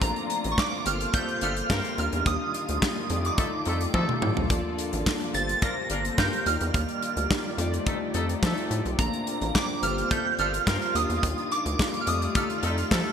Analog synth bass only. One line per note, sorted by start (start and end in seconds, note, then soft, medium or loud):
0.02 0.12 A#1 loud
0.45 0.54 A1 loud
0.86 1.06 G1 loud
1.42 1.62 G1 medium
1.70 1.80 G2 loud
1.98 2.09 D#2 loud
2.13 2.22 E2 medium
2.26 2.37 D#2 loud
2.69 2.78 D2 medium
3.10 3.30 F2 loud
3.66 3.86 F2 medium
3.94 4.05 F3 loud
4.23 4.33 A2 loud
4.37 4.47 B1 loud
4.50 4.61 A#1 loud
4.93 5.03 A1 loud
5.34 5.54 G1 loud
5.90 6.10 G1 medium
6.18 6.29 G2 loud
6.46 6.57 D#2 loud
6.61 6.71 E2 medium
6.74 6.85 D#2 loud
7.17 7.26 D2 medium
7.58 7.78 F2 loud
8.14 8.35 F2 medium
8.43 8.53 F3 loud
8.71 8.81 A2 loud
8.85 8.95 B1 loud
8.99 9.09 A#1 loud
9.41 9.51 A1 loud
9.82 10.03 G1 loud
10.39 10.59 G1 medium
10.67 10.78 G2 loud
10.95 11.06 D#2 loud
11.10 11.19 E2 medium
11.23 11.34 D#2 loud
11.66 11.75 D2 loud
12.07 12.27 F2 loud
12.63 12.83 F2 medium
12.91 13.02 F3 loud